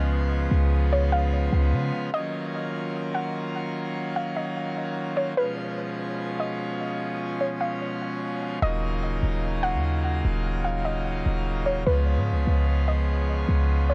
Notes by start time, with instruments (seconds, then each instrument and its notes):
Already playing: 808-style bass C#2, pipe organ C#3 F3 G#3 B3 F4
0.51 808-style bass C#2
0.92 synth pluck C#5
1.12 synth pluck F5
1.53 808-style bass C#2
1.73 808-style bass C#3
2.13 pipe organ D#3 F#3 A#3 C#4 F4, synth pluck D#5
3.14 synth pluck F#5
4.16 synth pluck F5
4.36 synth pluck D#5
5.17 synth pluck C#5
5.38 pipe organ B2 F3 G#3 C#4 F4, synth pluck B4
6.40 synth pluck D#5
7.41 synth pluck C#5
7.61 synth pluck F5
8.62 808-style bass D#1, pipe organ C#3 F#3 A#3 D#4 F4, synth pluck D#5
9.23 808-style bass D#1
9.63 synth pluck F#5
9.74 808-style bass D#2
10.24 808-style bass D#1
10.64 synth pluck F5
10.85 synth pluck D#5
11.26 808-style bass D#1
11.66 synth pluck C#5
11.86 808-style bass C#2, pipe organ F3 G#3 B3 F4, synth pluck B4
12.17 808-style bass G#2
12.32 808-style bass C#2
12.47 808-style bass C#2
12.88 synth pluck D#5
13.49 808-style bass C#2
13.90 synth pluck C#5